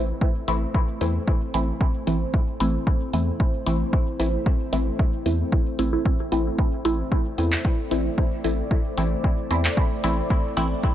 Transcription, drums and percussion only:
0.21 kick loud
0.48 open hi-hat medium
0.74 kick loud
1.01 open hi-hat medium
1.28 kick loud
1.54 open hi-hat medium
1.81 kick loud
2.07 open hi-hat medium
2.34 kick loud
2.60 open hi-hat medium
2.87 kick loud
3.13 open hi-hat medium
3.40 kick loud
3.67 open hi-hat medium
3.93 kick loud
4.20 open hi-hat medium
4.46 kick loud
4.73 open hi-hat medium
4.99 kick loud
5.26 open hi-hat medium
5.52 kick loud
5.79 open hi-hat medium
6.05 kick loud
6.32 open hi-hat medium
6.59 kick loud
6.85 open hi-hat medium
7.12 kick loud
7.38 open hi-hat medium
7.52 clap medium
7.65 kick loud
7.91 open hi-hat medium
8.18 kick loud
8.44 open hi-hat medium
8.71 kick loud
8.98 open hi-hat medium
9.24 kick loud
9.51 open hi-hat medium
9.65 clap medium
9.77 kick loud
10.04 open hi-hat medium
10.30 kick loud
10.57 open hi-hat medium
10.83 kick loud

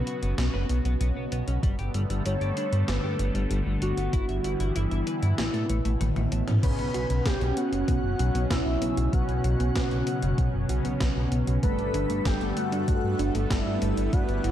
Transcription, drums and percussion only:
0.07 closed hi-hat medium
0.23 closed hi-hat soft
0.38 snare loud
0.38 closed hi-hat medium
0.69 closed hi-hat medium
0.85 closed hi-hat soft
1.01 closed hi-hat medium
1.32 closed hi-hat medium
1.48 closed hi-hat soft
1.63 kick loud
1.63 closed hi-hat medium
1.79 closed hi-hat soft
1.94 closed hi-hat medium
2.10 closed hi-hat soft
2.26 closed hi-hat medium
2.41 closed hi-hat soft
2.57 closed hi-hat medium
2.73 closed hi-hat medium
2.88 snare loud
2.88 closed hi-hat medium
3.19 closed hi-hat medium
3.35 closed hi-hat medium
3.51 closed hi-hat medium
3.82 closed hi-hat medium
3.97 closed hi-hat medium
4.13 kick loud
4.13 closed hi-hat medium
4.29 closed hi-hat soft
4.44 closed hi-hat medium
4.60 closed hi-hat medium
4.76 closed hi-hat medium
4.91 closed hi-hat soft
5.07 closed hi-hat medium
5.23 closed hi-hat medium
5.38 snare loud
5.38 closed hi-hat medium
5.54 closed hi-hat soft
5.69 closed hi-hat medium
5.85 closed hi-hat medium
6.01 closed hi-hat medium
6.01 high tom medium
6.16 closed hi-hat soft
6.16 high tom medium
6.32 closed hi-hat medium
6.48 closed hi-hat medium
6.48 mid tom medium
6.63 kick loud
6.63 closed hi-hat medium
6.63 crash loud
6.79 closed hi-hat soft
6.94 closed hi-hat medium
7.10 closed hi-hat medium
7.26 kick loud
7.26 snare loud
7.26 closed hi-hat medium
7.41 closed hi-hat soft
7.57 closed hi-hat medium
7.73 closed hi-hat medium
7.88 kick loud
7.88 closed hi-hat medium
8.19 closed hi-hat medium
8.35 closed hi-hat medium
8.51 kick loud
8.51 snare loud
8.51 closed hi-hat medium
8.82 closed hi-hat medium
8.97 closed hi-hat medium
9.13 kick loud
9.13 closed hi-hat medium
9.29 closed hi-hat soft
9.44 closed hi-hat medium
9.60 closed hi-hat medium
9.76 kick loud
9.76 snare loud
9.76 closed hi-hat medium
9.91 closed hi-hat soft
10.07 closed hi-hat medium
10.22 closed hi-hat medium
10.38 kick loud
10.38 closed hi-hat medium
10.69 closed hi-hat medium
10.85 closed hi-hat medium
11.01 kick loud
11.01 snare loud
11.01 closed hi-hat medium
11.32 closed hi-hat medium
11.47 closed hi-hat medium
11.63 kick loud
11.63 closed hi-hat medium
11.79 closed hi-hat soft
11.94 closed hi-hat medium
12.10 closed hi-hat medium
12.25 kick loud
12.25 snare loud
12.25 closed hi-hat medium
12.41 closed hi-hat soft
12.57 closed hi-hat medium
12.72 closed hi-hat medium
12.88 kick loud
12.88 closed hi-hat medium
13.19 closed hi-hat medium
13.35 closed hi-hat medium
13.51 kick loud
13.51 snare loud
13.51 closed hi-hat medium
13.82 closed hi-hat medium
13.97 closed hi-hat medium
14.13 kick loud
14.13 closed hi-hat medium
14.29 closed hi-hat soft
14.44 closed hi-hat medium

